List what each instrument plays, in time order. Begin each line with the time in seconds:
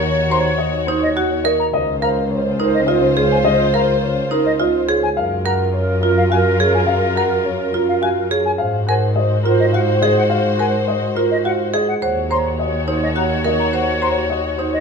Already playing: double bass section D#2, string section F#4 C#5
0.10 clarinet C#5
0.30 marimba C5, grand piano A#5, flute C6
0.40 clarinet C#5
0.58 grand piano D#5
0.69 clarinet C#5
0.87 marimba D#4, grand piano C5
1.00 clarinet C#5, flute D#5
1.16 marimba F#4, grand piano F#5
1.30 clarinet C#5
1.44 marimba A#4, grand piano D#5
1.59 flute A#5
1.73 double bass section C#2, string section F4 C5, clarinet C5, grand piano D#5
2.02 marimba A#4, clarinet C5, grand piano F5, flute A#5
2.30 clarinet C5, grand piano C#5
2.59 marimba D#4, grand piano A#4
2.63 clarinet C5
2.74 flute D#5
2.87 marimba F4, grand piano D#5
2.94 clarinet C5
3.16 marimba G#4, grand piano C#5
3.23 clarinet C5
3.31 flute G#5
3.45 grand piano D#5
3.53 clarinet C5
3.73 marimba A#4, grand piano F5, flute A#5
3.83 clarinet C5
4.02 grand piano C#5
4.13 clarinet C5
4.31 marimba D#4, grand piano A#4
4.42 clarinet C5, flute D#5
4.60 marimba F4, grand piano D#5
4.71 clarinet C5
4.88 marimba G#4, grand piano C#5
5.03 flute G#5
5.16 double bass section F#2, string section F4 A#4, clarinet A#4, grand piano F5
5.45 marimba A#4, clarinet A#4, grand piano F#5, flute A#5
5.73 grand piano C#5
5.77 clarinet A#4
6.01 marimba F4, grand piano A#4
6.06 clarinet A#4
6.17 flute F5
6.30 marimba F#4, grand piano F5, flute G#5
6.37 clarinet A#4
6.58 marimba G#4, grand piano C#5
6.66 clarinet A#4
6.74 flute G#5
6.87 grand piano F5
6.96 clarinet A#4
7.16 marimba A#4, grand piano F#5, flute A#5
7.26 clarinet A#4
7.44 grand piano C#5
7.56 clarinet A#4
7.73 marimba F4, grand piano A#4
7.86 clarinet A#4, flute F5
8.02 marimba F#4, grand piano F5, flute G#5
8.16 clarinet A#4
8.30 marimba G#4, grand piano C#5
8.45 flute G#5
8.58 double bass section G#2, string section F#4 C5, clarinet C5, grand piano F5
8.87 marimba A#4, clarinet C5, grand piano F#5, flute G#5
9.16 clarinet C5, grand piano D#5
9.44 marimba F4, grand piano A#4
9.49 clarinet C5
9.59 flute D#5
9.72 marimba F#4, grand piano F5, flute F#5
9.79 clarinet C5
10.02 marimba G#4, grand piano D#5
10.09 clarinet C5
10.17 flute F#5
10.30 grand piano F5
10.38 clarinet C5
10.58 marimba A#4, grand piano F#5, flute G#5
10.68 clarinet C5
10.88 grand piano D#5
10.98 clarinet C5
11.16 marimba F4, grand piano A#4
11.28 clarinet C5, flute D#5
11.45 marimba F#4, grand piano F5, flute F#5
11.58 clarinet C5
11.74 marimba G#4, grand piano D#5
11.88 flute F#5
12.02 double bass section D#2, string section F#4 C#5, marimba C5, clarinet C#5, grand piano F#5
12.30 marimba C5, clarinet C#5, grand piano A#5, flute C6
12.59 clarinet C#5, grand piano D#5
12.88 marimba D#4, grand piano C5, clarinet C#5
13.02 flute D#5
13.16 marimba F#4, grand piano F#5, flute A#5
13.22 clarinet C#5
13.45 marimba A#4, grand piano D#5
13.52 clarinet C#5
13.59 flute A#5
13.73 marimba C5, grand piano F#5
13.82 clarinet C#5
14.02 marimba C5, grand piano A#5, flute C6
14.11 clarinet C#5
14.30 grand piano D#5
14.41 clarinet C#5
14.58 marimba D#4, grand piano C5
14.71 clarinet C#5, flute D#5